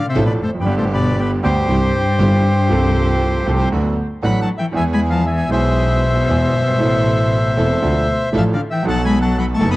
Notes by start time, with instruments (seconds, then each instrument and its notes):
0.08 cello C3, bandoneon C5 E5
0.15 double bass A1, grand piano A1 A2 F3 A3 D4 A4, string section D4 F4 A4
0.25 cello B2, bandoneon B4 D5
0.41 double bass F1, cello A2, bandoneon A4 C5
0.48 grand piano E2
0.55 grand piano F2
0.59 grand piano F#2, cello G2, bandoneon G4 B4
0.65 grand piano G1 G2 D3 G3 B3, double bass G1, string section B3 D4 G4
0.69 grand piano G4
0.77 cello A2, bandoneon A4 C5
0.93 cello B2, bandoneon B4 D5
1.19 cello G2, bandoneon G4 B4
1.43 grand piano D2 D3 G3 B3 G4, double bass D2, cello G2, string section B3 D4 G4, bandoneon G4 C5
1.68 grand piano C2 C3 E3 G3 C4 G4, double bass C2, string section C4 E4 G4
2.18 grand piano G1 G2 E3 G3 C4 G4, double bass G1, string section C4 E4 G4
2.68 double bass C2, grand piano C2 C3 F3 A3 C4, string section C4 F4 A4
2.73 grand piano A4
3.46 grand piano C2 C3 F3 A3 C4 A4, double bass C2, string section C4 F4 A4
3.71 grand piano D2 D3 F#3 B3 D4 A4, double bass D2, string section B3 D4 F#4
4.22 grand piano A1 A2 F#3 B3 D4 A4, double bass A1, string section B3 D4 F#4, bandoneon F#5 B5
4.27 cello F#3
4.40 cello F#3, bandoneon F#5 A5
4.58 cello E3, bandoneon E5 G5
4.71 grand piano E2 E3 G#3 B3 G#4, double bass E2, string section B3 E4 G#4
4.76 cello E3, bandoneon E5 G#5
4.93 cello G#3, bandoneon G#5 B5
5.10 cello F3, bandoneon F5 A5
5.26 cello E3, bandoneon E5 G#5
5.49 grand piano B1 B2 E3 G#3 G#4, double bass B1, string section G#3 E4 G#4, bandoneon C5
5.53 cello B2, bandoneon E5
6.27 grand piano E2 E3 G#3 B3 G#4, double bass E2, string section B3 E4 G#4
6.55 double bass G1
6.60 grand piano F#1
6.67 grand piano G1
6.73 grand piano G#1
6.77 grand piano A1 A2 E3 A3 A4 C5, double bass A1, string section E4 A4 C5
7.56 grand piano E1 E2 E3 A3 C4 A4, double bass E1, string section C4 E4 A4
7.82 grand piano D2 D3 F3 A3 D4 A4, double bass D2, string section D4 F4 A4
8.32 grand piano A1 A2 F3 A3 D4 A4, double bass A1, string section D4 F4 A4
8.36 cello F3, bandoneon F5 A5
8.53 cello D3, bandoneon D5 F5
8.70 cello E3, bandoneon E5 G5
8.83 grand piano B1 B2 F#3 B3 D#4 A4, double bass B1, string section B3 D#4 A4
8.88 cello F#3, bandoneon F#5 A5
9.05 cello G#3, bandoneon G#5 B5
9.21 cello F#3, bandoneon F#5 A5
9.38 cello F#3, bandoneon F#5 B5
9.54 cello A3, bandoneon A5 C#6
9.60 grand piano F#1 F#2 F#3 B3 D#4 A4, double bass F#1, string section B3 D#4 A4
9.70 cello B3, bandoneon B5 D#6